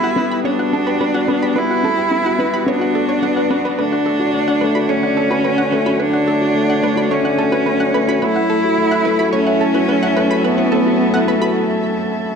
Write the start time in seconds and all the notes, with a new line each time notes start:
Already playing: G3 B3 E4 F#4 G4 A4 B4
0.02 F#4 F#5
0.16 B3 B4
0.30 G4 B5
0.44 B3 D4 C#5
0.59 F#4 F#5
0.68 F#5
0.73 B3 A4
0.87 G4 B4
1.00 B3 B4
1.14 F#4 F#5
1.28 B3 B4
1.42 G4 B5
1.56 B3 E4 B4
1.70 F#4 F#5
1.84 B3 A4
1.97 G4
2.11 B3
2.25 F#4 F#5
2.39 B3 B4
2.53 G4 B5
2.66 B3 D4 C#5
2.80 F#4 F#5
2.94 A4 D5
3.08 D4 C#5
3.22 B3 F#5
3.36 B4 F#5
3.50 B3 B4
3.63 B4 D5
3.77 D3 A3 D4 B4
3.92 D4 F#5
4.05 A3 A4
4.12 C#5
4.20 F#4
4.33 A3
4.48 D4 F#5
4.61 A3 B4
4.75 F#4 B5
4.89 A3 C#4 C#5
5.03 D4 F#5
5.17 A3 A4
5.30 F#4 B4
5.44 A3 B4
5.58 D4 F#5
5.72 A3 B4
5.86 F#4 B5
6.00 A3 D4 B4
6.13 D4 F#5
6.27 A3 A4
6.41 F#4
6.55 A3
6.68 D4 F#5
6.82 A3 B4
6.96 F#4 B5
7.10 A3 C#4 C#5
7.24 D4 F#5
7.38 A3 A4
7.52 F#4 B4
7.66 A3 B4
7.80 D4 F#5
7.94 A3 B4
8.08 F#4 B5
8.21 F#3 A3 E4 B4
8.36 E4 F#5
8.50 A3 A4
8.59 E5
8.64 F#4
8.78 A3
8.91 E4 F#5
8.98 C#4
9.05 A3 B4
9.19 F#4 A4 B5
9.33 A3 C#4 C#5
9.47 E4 F#5
9.61 A3 A4
9.74 F#4 B4
9.89 A3 B4
10.03 E4 F#5
10.17 A3 B4
10.30 F#4 B5
10.44 A3 B3 B4
10.58 E4 F#5
10.72 A3 A4
10.86 F#4
10.99 A3
11.13 E4 F#5
11.27 A3 B4
11.40 F#4 B5